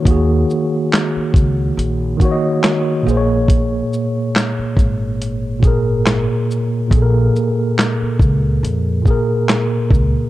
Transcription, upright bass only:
X:1
M:4/4
L:1/16
Q:"Swing 16ths" 1/4=70
K:Bbphr
V:1 name="Upright bass" clef=bass
E,,2 z4 D,,2 B,,,2 z4 B,,,2- | B,,,2 z4 A,,,6- A,,, z3 | B,,,2 z4 D,,2 F,,2 z4 D,, z |]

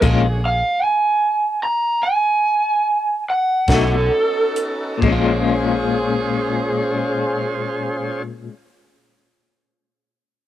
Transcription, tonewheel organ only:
X:1
M:12/8
L:1/8
Q:3/8=44
K:Bbm
V:1 name="Tonewheel organ"
[=D,GA_d] z8 [D^D^F=A]3 | [DFAc]12 |]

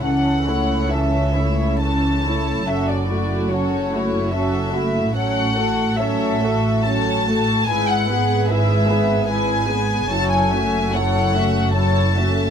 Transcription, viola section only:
X:1
M:3/4
L:1/8
Q:1/4=73
K:F#m
V:1 name="Viola section"
[E,C] [A,E] [E,C] [A,E] [E,C] [A,E] | [F,C] [A,F] [F,C] [A,F] [F,C] [A,F] | [F,C] A, [F,C] A, [F,C] A, | [G,E] [B,G] [G,E] [B,G] [G,E] [B,G] |
[F,E] [A,C] [F,E] [A,C] [F,E] [A,C] |]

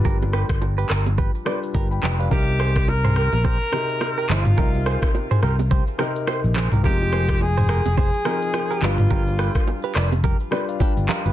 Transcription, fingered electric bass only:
X:1
M:4/4
L:1/16
Q:"Swing 16ths" 1/4=106
K:Cm
V:1 name="Fingered electric bass" clef=bass
G,,,3 G,,,3 G,,,3 z3 G,,,2 F,,,2 | C,,6- C,, B,,,2 z4 z G,,,2 | C,,3 z3 C,,3 z4 B,,,2 C,, | F,,,6- F,,, F,,,2 z4 z G,,,2 |
G,,,3 z3 F,,,3 z4 G,,, z G,,, |]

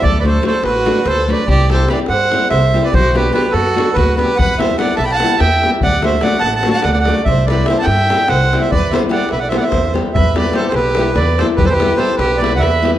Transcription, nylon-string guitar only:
X:1
M:7/8
L:1/8
Q:1/4=146
K:Em
V:1 name="Nylon-string guitar"
z [F,A,DF] [F,A,DF] z [F,A,DF] z [F,A,DF] | z [G,CEG] [G,CEG] z [G,CEG] z [G,CEG] | z [F,B,DF] [F,B,DF] z [F,B,DF] z [F,B,DF] | z [G,B,EG] [G,B,EG] z [G,B,EG] z [G,B,EG] |
z [F,A,DF] [F,A,DF] z [F,A,DF] z [F,A,DF] | z [G,CEG] [G,CEG] z [G,CEG] z [G,CEG] | z [G,B,EG] [G,B,EG] z [G,B,EG] z [G,B,EG] | z [G,B,EG] [G,B,EG] z [G,B,EG] z [G,B,EG] |
z [G,B,EG] [G,B,EG] z [G,B,EG] z [G,B,EG] |]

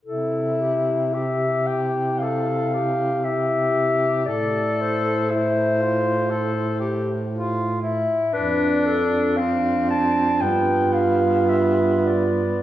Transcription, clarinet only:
X:1
M:4/4
L:1/8
Q:1/4=58
K:C
V:1 name="Clarinet"
A G e g f2 e2 | d c6 z | B A f a g f e d |]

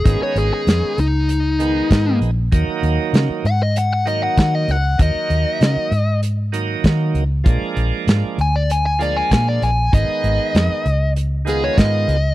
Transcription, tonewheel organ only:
X:1
M:4/4
L:1/8
Q:1/4=97
K:Ebm
V:1 name="Tonewheel organ"
[E,A,CD]3 z2 [E,A,CE]2 z | [E,G,B,E]3 z2 [E,G,B,E]2 z | [E,G,B,E]3 z2 [E,G,B,E]2 z | [F,A,B,=D]3 z2 [F,A,B,D]2 z |
[E,A,CE]3 z2 [E,A,CF]2 z |]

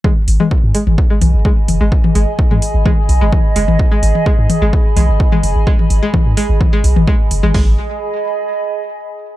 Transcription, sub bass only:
X:1
M:4/4
L:1/16
Q:1/4=128
K:G#m
V:1 name="Sub bass" clef=bass
z2 G,,, z2 G,, z G,,, z2 B,,, G,,, z2 F,,, G,,, | z2 G,,, z2 G,, z G,,, z2 B,,, G,,, z2 F,,, G,,, | z2 G,,, z2 G,, z G,,, z2 B,,, G,,, z2 F,,, G,,, | z2 G,,, z2 G,, z G,,, z2 B,,, G,,, z2 F,,, G,,, |
G,,,2 z12 z2 |]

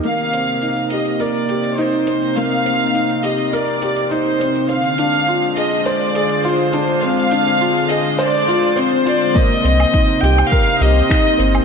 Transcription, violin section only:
X:1
M:4/4
L:1/8
Q:1/4=103
K:Cm
V:1 name="Violin section"
f3 e d2 c2 | f3 e d2 c2 | f3 e d2 c2 | f3 e d2 c d |
e3 g f e3 |]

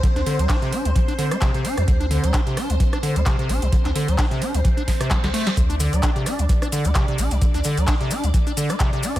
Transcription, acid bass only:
X:1
M:4/4
L:1/16
Q:"Swing 16ths" 1/4=130
K:Dm
V:1 name="Acid bass" clef=bass
D, D D, G, D C, D F, E, D D, A, C, C, D F, | D, D D, G, D C, D F, E, D D, A, C, C, D F, | D, D D, G, D C, D F, E, D F, C, D, D, A, D, | D, D D, G, D C, D F, E, D D, A, C, C, D F, |
D, D D, G, D C, D F, E, D D, A, C, C, D F, |]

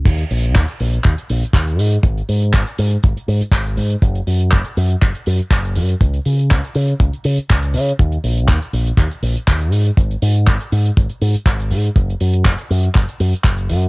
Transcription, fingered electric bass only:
X:1
M:4/4
L:1/8
Q:"Swing 16ths" 1/4=121
K:D#m
V:1 name="Fingered electric bass" clef=bass
D,, A,,, D,, A,,, D,, A,,, D,, G,, | G,,, G,, G,,, G,, G,,, G,, G,,, G,, | F,,, F,, F,,, F,, F,,, F,, F,,, F,, | C,, C, C,, C, C,, C, C,, C, |
D,, A,,, D,, A,,, D,, A,,, D,, G,, | G,,, G,, G,,, G,, G,,, G,, G,,, G,, | F,,, F,, F,,, F,, F,,, F,, F,,, F,, |]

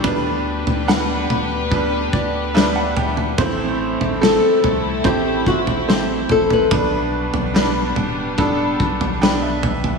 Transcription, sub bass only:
X:1
M:4/4
L:1/16
Q:1/4=72
K:G
V:1 name="Sub bass" clef=bass
D,,3 D,,3 D,,4 D,,6 | A,,,3 A,,,2 z C,,2 A,,,6 A,,,2 | B,,,3 B,,,3 D,,,4 B,,,6 |]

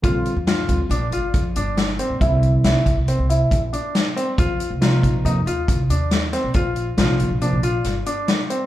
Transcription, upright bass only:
X:1
M:5/4
L:1/16
Q:1/4=138
K:Cm
V:1 name="Upright bass" clef=bass
B,,,2 z F,,3 D,, z B,,,2 G,,,2 F,,2 G,,,4- G,,, B,,, | C,,4 C,, z C,, C,, z C,,3 B,,,2 z6 | F,,2 z C,,3 B,, z F,,2 E,,2 C,,2 E,,4- E,, _C,, | B,,,4 B,,, z B,,, B,,, z B,,,3 G,,,2 z6 |]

